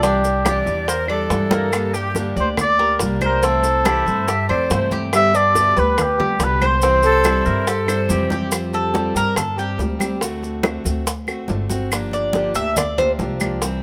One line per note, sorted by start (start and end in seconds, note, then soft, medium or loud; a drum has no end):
0.00 0.60 C2 medium
0.00 0.23 C3 medium
0.00 0.23 E3 medium
0.00 0.23 G3 medium
0.00 0.22 D4 medium
0.00 0.44 D4 medium
0.00 0.21 E4 medium
0.00 0.63 G4 medium
0.00 high bongo medium
0.00 maracas medium
0.04 high conga soft
0.22 0.44 G3 soft
0.22 0.44 D4 soft
0.22 0.44 E4 soft
0.22 high bongo soft
0.22 high conga soft
0.22 maracas medium
0.45 0.65 C3 medium
0.45 0.66 E3 medium
0.45 0.66 G3 medium
0.45 0.65 D4 medium
0.45 0.64 E4 medium
0.45 0.87 G4 medium
0.45 0.90 D5 loud
0.45 high bongo medium
0.45 high conga loud
0.45 claves medium
0.45 maracas medium
0.65 1.26 E2 loud
0.65 0.86 G3 soft
0.65 0.87 D4 soft
0.65 0.86 E4 medium
0.65 high conga soft
0.65 maracas soft
0.87 1.10 A#4 loud
0.87 1.09 C5 medium
0.87 muted steel-string acoustic guitar stroke medium
0.87 high bongo medium
0.87 high conga soft
0.87 maracas medium
1.07 1.29 G3 soft
1.07 1.29 D4 soft
1.07 1.29 E4 soft
1.07 1.95 A4 medium
1.07 1.51 D5 medium
1.07 high bongo soft
1.07 high conga soft
1.07 claves medium
1.29 2.30 G2 medium
1.29 1.71 C3 medium
1.29 1.72 E3 medium
1.29 1.71 G3 medium
1.29 1.72 D4 medium
1.29 1.72 E4 medium
1.29 high bongo medium
1.29 low bongo medium
1.29 high conga medium
1.29 maracas medium
1.51 1.93 A#3 medium
1.51 high conga loud
1.51 maracas soft
1.71 1.93 D3 medium
1.71 1.93 G3 medium
1.71 1.93 A#3 medium
1.71 1.93 D4 medium
1.71 1.92 G4 medium
1.71 high bongo medium
1.71 high conga soft
1.71 claves medium
1.71 maracas medium
1.93 2.15 A#3 soft
1.93 2.15 D4 soft
1.93 2.14 G4 soft
1.93 2.26 G4 medium
1.93 2.35 G4 medium
1.93 high bongo soft
1.93 high conga soft
1.93 maracas medium
2.15 2.35 D3 medium
2.15 2.36 G3 medium
2.15 2.36 A#3 medium
2.15 2.36 D4 medium
2.15 2.35 G4 medium
2.15 high bongo medium
2.15 high conga medium
2.15 maracas medium
2.36 2.96 D2 loud
2.36 2.57 A#3 soft
2.36 2.57 D4 soft
2.36 2.57 G4 soft
2.36 2.78 D5 medium
2.36 high conga soft
2.36 maracas soft
2.40 2.49 C5 medium
2.57 muted steel-string acoustic guitar stroke medium
2.57 high bongo medium
2.57 high conga soft
2.57 low conga medium
2.57 claves medium
2.57 maracas medium
2.62 2.99 D5 loud
2.79 2.98 A#3 soft
2.79 2.99 D4 soft
2.79 2.99 G4 soft
2.79 3.20 A#4 medium
2.79 high bongo soft
2.79 high conga soft
2.98 4.00 C2 medium
2.98 3.41 D3 medium
2.98 3.41 G3 medium
2.98 3.42 A#3 medium
2.98 3.42 D4 medium
2.98 3.42 G4 medium
2.98 high bongo medium
2.98 low bongo medium
2.98 high conga soft
2.98 maracas medium
3.21 3.46 A#4 medium
3.21 3.42 C5 medium
3.21 high bongo soft
3.21 high conga medium
3.21 claves medium
3.21 maracas soft
3.41 3.62 C3 medium
3.41 3.63 E3 medium
3.41 3.63 A3 medium
3.41 3.84 C4 medium
3.41 3.62 C4 medium
3.41 3.61 E4 medium
3.41 4.71 A4 loud
3.41 high bongo medium
3.41 high conga soft
3.41 maracas medium
3.63 3.83 A3 soft
3.63 3.84 C4 soft
3.63 3.84 E4 soft
3.63 high bongo soft
3.63 high conga soft
3.63 maracas medium
3.84 4.05 C3 medium
3.84 4.05 E3 medium
3.84 4.05 A3 medium
3.84 4.06 C4 medium
3.84 4.26 E4 medium
3.84 4.04 E4 medium
3.84 4.08 G4 medium
3.84 high bongo medium
3.84 high conga loud
3.84 claves medium
3.84 maracas medium
4.06 4.46 G2 loud
4.06 4.28 A3 soft
4.06 4.27 C4 soft
4.06 4.26 E4 medium
4.06 4.30 C5 medium
4.06 high conga soft
4.06 maracas soft
4.28 4.49 G4 medium
4.28 4.48 E5 loud
4.28 muted steel-string acoustic guitar stroke soft
4.28 high bongo medium
4.28 high conga soft
4.28 maracas medium
4.49 4.69 F2 medium
4.49 4.70 A3 soft
4.49 4.70 C4 medium
4.49 4.70 E4 soft
4.49 4.90 C5 medium
4.49 4.73 D5 loud
4.49 high bongo soft
4.49 high conga soft
4.49 claves medium
4.70 5.70 G2 medium
4.70 5.12 C3 medium
4.70 5.12 E3 medium
4.70 5.12 A3 medium
4.70 5.13 C4 medium
4.70 5.13 E4 medium
4.70 5.03 C5 medium
4.70 high bongo medium
4.70 low bongo medium
4.70 high conga medium
4.70 maracas medium
4.91 5.33 G4 medium
4.91 high conga medium
4.91 maracas soft
5.12 5.33 B2 medium
5.12 5.33 D3 medium
5.12 5.34 G3 medium
5.12 5.34 B3 medium
5.12 5.32 G4 medium
5.12 5.38 E5 loud
5.12 high bongo medium
5.12 high conga soft
5.12 claves medium
5.12 maracas medium
5.34 5.55 G3 soft
5.34 5.55 B3 soft
5.34 5.75 D4 medium
5.34 5.54 G4 soft
5.34 5.81 D5 loud
5.34 high bongo soft
5.34 high conga soft
5.34 maracas medium
5.55 5.76 B2 medium
5.55 5.76 D3 medium
5.55 5.76 G3 medium
5.55 5.76 B3 medium
5.55 5.75 G4 medium
5.55 high bongo medium
5.55 high conga medium
5.55 maracas medium
5.76 6.36 D2 medium
5.76 5.97 G3 soft
5.76 5.97 B3 soft
5.76 5.97 G4 medium
5.76 6.18 B4 medium
5.76 6.03 B4 medium
5.76 high conga soft
5.76 maracas soft
5.98 muted steel-string acoustic guitar stroke medium
5.98 high bongo medium
5.98 high conga soft
5.98 low conga medium
5.98 claves medium
5.98 maracas medium
6.02 6.45 G4 medium
6.18 6.39 G3 soft
6.18 6.39 B3 soft
6.18 6.39 G4 medium
6.18 6.60 G4 medium
6.18 high bongo soft
6.18 high conga soft
6.18 low conga medium
6.39 7.40 C2 loud
6.39 6.81 B2 medium
6.39 6.82 D3 medium
6.39 6.82 G3 medium
6.39 6.82 B3 medium
6.39 6.82 G4 medium
6.39 high bongo medium
6.39 low bongo medium
6.39 high conga soft
6.39 maracas medium
6.44 6.68 B4 medium
6.61 6.82 C5 medium
6.61 high bongo soft
6.61 high conga medium
6.61 claves medium
6.61 maracas soft
6.66 7.91 C5 medium
6.82 7.03 C3 medium
6.82 7.03 E3 medium
6.82 7.03 G3 medium
6.82 7.24 C4 medium
6.82 7.02 C4 medium
6.82 7.01 E4 medium
6.82 high bongo medium
6.82 high conga soft
6.82 maracas medium
7.02 7.24 G3 soft
7.02 7.24 C4 soft
7.02 7.24 E4 soft
7.02 7.47 A4 loud
7.02 high bongo soft
7.02 high conga soft
7.02 maracas medium
7.24 7.45 C3 medium
7.24 7.45 E3 medium
7.24 7.46 G3 medium
7.24 7.45 C4 medium
7.24 7.66 E4 medium
7.24 7.44 E4 medium
7.24 high bongo medium
7.24 high conga medium
7.24 claves medium
7.24 maracas medium
7.45 8.06 G2 loud
7.45 7.65 G3 soft
7.45 7.66 C4 soft
7.45 7.66 E4 medium
7.45 7.69 A#4 medium
7.45 high conga soft
7.45 maracas soft
7.66 7.88 G4 medium
7.66 8.12 A4 loud
7.66 muted steel-string acoustic guitar stroke medium
7.66 high bongo medium
7.66 high conga soft
7.66 maracas medium
7.87 8.08 G3 soft
7.87 8.09 C4 soft
7.87 8.08 E4 soft
7.87 8.30 C5 medium
7.87 high bongo medium
7.87 high conga soft
7.87 claves medium
7.87 maracas medium
8.08 9.10 F2 medium
8.08 8.50 C3 medium
8.08 8.50 E3 medium
8.08 8.51 G3 medium
8.08 8.51 C4 medium
8.08 8.52 E4 medium
8.08 8.53 G4 medium
8.08 low bongo medium
8.08 high conga medium
8.08 maracas medium
8.30 8.52 G4 medium
8.30 low bongo medium
8.30 high conga medium
8.30 maracas soft
8.51 8.92 F3 medium
8.51 8.93 G3 medium
8.51 8.94 C4 medium
8.51 8.95 G4 medium
8.51 high bongo medium
8.51 high conga soft
8.51 claves medium
8.51 maracas medium
8.73 9.13 A4 medium
8.73 high bongo soft
8.73 high conga soft
8.73 maracas soft
8.93 9.15 F3 medium
8.93 9.15 G3 medium
8.93 9.14 C4 medium
8.93 9.13 G4 medium
8.93 high bongo medium
8.93 high conga medium
8.93 maracas soft
9.14 9.75 G2 medium
9.14 9.35 G3 soft
9.14 9.35 C4 soft
9.14 9.36 G4 soft
9.14 9.37 A#4 loud
9.14 high bongo soft
9.14 high conga soft
9.14 maracas medium
9.36 9.58 A4 medium
9.36 muted steel-string acoustic guitar stroke medium
9.36 high bongo medium
9.36 high conga soft
9.36 low conga medium
9.36 claves medium
9.36 maracas medium
9.56 9.78 G3 soft
9.56 9.78 C4 soft
9.56 9.78 G4 soft
9.56 9.79 G4 medium
9.56 high bongo soft
9.56 high conga soft
9.56 maracas soft
9.78 10.79 D2 medium
9.78 9.99 F3 soft
9.78 10.00 G3 medium
9.78 9.99 C4 soft
9.78 9.98 G4 medium
9.78 high bongo soft
9.78 low bongo medium
9.78 high conga medium
9.78 maracas soft
9.99 10.22 G3 medium
9.99 10.21 C4 medium
9.99 10.21 G4 medium
9.99 high conga medium
9.99 claves medium
9.99 maracas medium
10.21 10.62 D3 medium
10.21 10.63 A3 medium
10.21 10.64 C4 medium
10.21 10.65 F#4 medium
10.21 high bongo medium
10.21 high conga soft
10.21 maracas medium
10.43 high bongo soft
10.43 high conga soft
10.43 maracas soft
10.63 10.84 D3 medium
10.63 10.85 A3 medium
10.63 10.85 C4 medium
10.63 10.83 F#4 medium
10.63 high bongo medium
10.63 high conga medium
10.63 claves medium
10.63 maracas soft
10.84 11.45 D2 medium
10.84 11.05 A3 soft
10.84 11.06 C4 soft
10.84 11.06 F#4 soft
10.84 high bongo soft
10.84 high conga soft
10.84 maracas medium
11.06 muted steel-string acoustic guitar stroke medium
11.06 high bongo medium
11.06 high conga soft
11.06 maracas medium
11.27 11.48 A3 soft
11.27 11.49 C4 soft
11.27 11.49 F#4 medium
11.27 high bongo soft
11.27 high conga soft
11.27 claves medium
11.27 maracas soft
11.48 12.49 G1 medium
11.48 11.70 D3 medium
11.48 11.70 A3 medium
11.48 11.70 C4 soft
11.48 11.68 F#4 medium
11.48 high bongo soft
11.48 low bongo medium
11.48 high conga medium
11.48 maracas soft
11.70 11.91 A3 medium
11.70 11.91 C4 medium
11.70 11.91 F#4 medium
11.70 high conga medium
11.70 maracas medium
11.91 12.32 D3 medium
11.91 12.33 F3 medium
11.91 12.33 A#3 medium
11.91 12.34 D4 medium
11.91 12.34 G4 medium
11.91 high bongo medium
11.91 high conga soft
11.91 claves medium
11.91 maracas medium
12.11 12.53 D5 medium
12.11 high bongo soft
12.11 high conga soft
12.11 maracas soft
12.33 12.54 D3 medium
12.33 12.55 F3 medium
12.33 12.55 A#3 medium
12.33 12.55 D4 medium
12.33 12.54 G4 medium
12.33 high bongo medium
12.33 high conga medium
12.33 maracas soft
12.54 13.15 D2 medium
12.54 12.77 A#3 soft
12.54 12.76 D4 soft
12.54 12.76 G4 medium
12.54 12.76 E5 loud
12.54 high bongo soft
12.54 high conga soft
12.54 maracas medium
12.76 12.98 D5 medium
12.76 muted steel-string acoustic guitar stroke medium
12.76 high bongo medium
12.76 high conga soft
12.76 low conga medium
12.76 claves medium
12.76 maracas loud
12.98 13.19 A#3 soft
12.98 13.19 D4 soft
12.98 13.18 G4 soft
12.98 13.11 C5 loud
12.98 high bongo soft
12.98 high conga soft
12.98 low conga medium
12.98 maracas soft
13.18 13.83 C2 medium
13.18 13.40 F3 soft
13.18 13.40 A#3 medium
13.18 13.40 D4 medium
13.18 13.39 G4 medium
13.18 high bongo soft
13.18 low bongo medium
13.18 high conga medium
13.18 maracas soft
13.40 13.62 F3 medium
13.40 13.62 A#3 medium
13.40 13.61 D4 medium
13.40 13.61 G4 medium
13.40 high conga medium
13.40 claves medium
13.40 maracas medium
13.62 13.83 C3 medium
13.62 13.83 E3 medium
13.62 13.83 G3 medium
13.62 13.83 C4 medium
13.62 13.83 E4 medium
13.62 high bongo medium
13.62 high conga soft
13.62 maracas medium